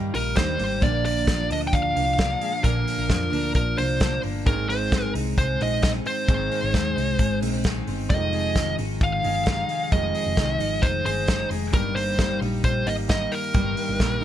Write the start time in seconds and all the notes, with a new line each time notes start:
Already playing: G2 D#3 G3 A#3 D#4
0.14 A#1 D#4 A#4, open hi-hat
0.35 D#2 G2 D#3 G3 A#3 D#4 C5, kick, snare, closed hi-hat
0.57 G#1 G3 A#3 D#4, open hi-hat
0.80 A#1 A#2 D3 F3 A#3 D4 D5, kick, closed hi-hat
1.05 A#3 D5, open hi-hat
1.27 D3 F3 A#3 D4, kick, snare, closed hi-hat
1.50 D2 F3 A#3 D4 D#5, open hi-hat
1.67 G5
1.73 D2 F3 F5, kick, closed hi-hat
1.95 C2 F3 A#3 D4, open hi-hat
2.17 D3 F3 A#3 D4, kick, snare, closed hi-hat
2.41 G#3, open hi-hat
2.53 A#3
2.63 A#1 A#2 D3 F3 A#3 D4 A#4, kick, closed hi-hat
2.87 A#3, open hi-hat
2.98 A#1
3.08 F2 D3 F3 A#3 D4, kick, snare, closed hi-hat
3.30 D2 F3 A#3 D4, open hi-hat
3.55 A#1 F3 A#4, kick, closed hi-hat
3.77 C2 F3 A#3 D4 C5, open hi-hat
4.00 D3 F3 A#3 D4, kick, snare, closed hi-hat
4.23 G1 A#3, open hi-hat
4.46 G#1 G#2 D#3 G#3 C4 D#4 A#4, kick, closed hi-hat
4.69 C4 C5, open hi-hat
4.91 D#3 G#3 C4 D#4, kick, snare, closed hi-hat
5.15 C2 G#3 C4 D#4, open hi-hat
5.38 C2 G#3 C5, kick, closed hi-hat
5.61 A#1 G#3 C4 D#4 D#5, open hi-hat
5.82 D#3 G#3 C4 D#4 D#5, kick, snare, closed hi-hat
6.06 C4 C5, open hi-hat
6.28 G#1 G#2 D#3 G#3 C4 D#4, kick, closed hi-hat
6.51 A#3, open hi-hat
6.63 G#1 C4
6.73 D#2 D#3 G#3 C4 D#4, kick, snare, closed hi-hat
6.96 C2 G#3 C4 D#4, open hi-hat
7.19 G#1 G#3, kick, closed hi-hat
7.41 A#1 G#3 A#3 C4 D#4, open hi-hat
7.53 C4
7.64 D#3 G#3 C4 D#4, kick, snare, closed hi-hat
7.87 G1 C4, open hi-hat
8.09 F1 F2 C3 D#3 G#3 D#4 D#5, kick, closed hi-hat
8.33 G#3, open hi-hat
8.55 C3 D#3 G#3 D#4, kick, snare, closed hi-hat
8.78 G#1 D#3 G#3 D#4, open hi-hat
9.01 G#1 D#3 F5, kick, closed hi-hat
9.23 G1 D#3 G#3 D#4, open hi-hat
9.45 C3 D#3 G#3 D#4, kick, snare, closed hi-hat
9.69 G#3, open hi-hat
9.91 F1 F2 C3 D#3 G#3 D#4 D#5, kick, closed hi-hat
10.15 G#3, open hi-hat
10.26 F1
10.36 C2 C3 D#3 G#3 D#4, kick, snare, closed hi-hat
10.58 G#1 D#3 G#3 D#4, open hi-hat
10.82 F1 D#3 C5, kick, closed hi-hat
11.04 G1 D#3 G#3 D#4 C5, open hi-hat
11.26 C3 D#3 G#3 D#4, kick, snare, closed hi-hat
11.51 F1 G#3, open hi-hat
11.72 G1 G2 D#3 G3 A#3 D#4 A#4, kick, closed hi-hat
11.96 A#3 C5, open hi-hat
12.18 D#3 G3 A#3 D#4, kick, snare, closed hi-hat
12.41 A#1 G3 A#3 D#4, open hi-hat
12.64 A#1 G3 C5, kick, closed hi-hat
12.86 G#1 G3 A#3 D#4 D#5, open hi-hat
13.08 D#3 G3 A#3 D#4 D#5, kick, snare, closed hi-hat
13.32 A#3 A#4, open hi-hat
13.54 G1 G2 D#3 G3 A#3 D#4, kick, closed hi-hat
13.77 A#3, open hi-hat
13.89 G1
13.99 A#1 D#3 G3 A#3 D#4, kick, snare, closed hi-hat
14.21 D#4